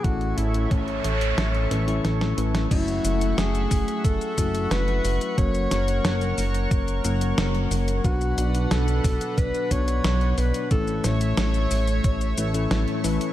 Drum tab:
CC |----------------|x---------------|----------------|----------------|
HH |xxxxxxxxxxxxxxxx|xxxxxxoxxxxxxxox|xxxxxxoxxxxxxxox|xxxxxxoxxxxxxxox|
SH |----------------|xxxxxxxxxxxxx-xx|xxxxxxxxxxxxx-xx|xxxxxxxxxxxxx-xx|
SD |--------o-o-oo-o|----o-------o---|--o-o-------o---|----o-------o---|
BD |o---o-----------|o-----o-o-o-----|o-------o-------|o-----o-o-o-----|

CC |----------------|
HH |xxxxxxoxxxxxxxox|
SH |xxxxxxxxxxxxx-xx|
SD |--o-o-------o---|
BD |o-------o-------|